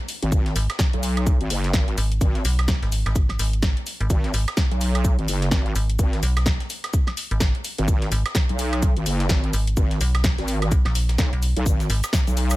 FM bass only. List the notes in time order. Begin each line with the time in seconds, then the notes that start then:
0.56 G#1
1.98 G#1
2.45 B1
2.82 G#1
3.06 G#1
3.39 G#1
4.00 G#1
4.34 G#1
5.75 G#1
6.23 B1
7.31 G#1
8.12 G#1
9.54 G#1
10.01 B1
10.72 B1
10.86 A#1
11.33 B1
11.90 G#1